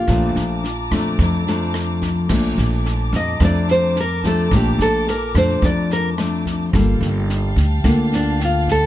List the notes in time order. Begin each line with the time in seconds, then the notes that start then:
Already playing: F4
0.08 A#1 A#2 F3 A3 D4 A5 A#5 D6, kick, cross-stick, snare
0.36 A#1, snare
0.64 snare
0.91 F2 F3 A3 D4, kick, cross-stick, snare
1.19 F2, kick, snare
1.47 F3 A3 D4, snare
1.74 cross-stick, snare
2.02 kick, snare
2.29 A#1 A#2 F3 A3 D4 A5 A#5 D6, kick, cross-stick, snare, crash
2.58 A#1, snare
2.85 snare
3.13 F2 D#5, kick, snare
3.40 F2 F3 A3 D4, kick, cross-stick, snare
3.45 D5
3.68 C5, snare
3.96 snare
4.00 A#4
4.24 F3 A3 D4 A4, kick, snare
4.51 A#1 A#2 F3 A3 D4, kick, cross-stick, snare
4.56 G4
4.78 A#1 A4, snare
5.07 A#4, snare
5.35 F2 F3 A3 D4 C5, kick, cross-stick, snare
5.62 F2 D5, kick, snare
5.90 A#4, snare
6.18 F3 A3 D4, cross-stick, snare
6.46 kick, snare
6.73 G1 G3 A#3 F4 A4 F5 G5 A5, kick, cross-stick, snare
7.01 G1, snare
7.29 snare
7.56 D2, kick, snare
7.84 D2 D3 A#3 F4 A4, kick, cross-stick, snare
8.13 D4, snare
8.40 snare
8.45 F4
8.67 kick, snare
8.72 A4